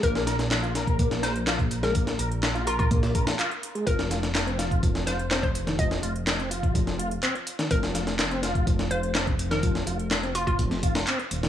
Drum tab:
HH |xxxxxxxxxxxxxxxx|xxxxxxxxxxxxxxxx|xxxxxxxxxxxxxxxx|xxxxxxxxxxxxxxxx|
CP |----x-------x---|----x-------x---|----x-------x---|----x-------x---|
SD |-oooo-o--oo-o--o|-o--o----o-o----|-oooo-o--oo-o--o|-o--o----o-----o|
BD |o------oo----o--|o------oo-o-----|o------oo----o--|o------oo-------|

HH |xxxxxxxxxxxxxxxx|xxxxxxxxxxxxxxxx|
CP |----x-------x---|----x-------x---|
SD |-oooo-o--o--o--o|-o--o----o-o---o|
BD |o------oo----o--|o------oo-o-----|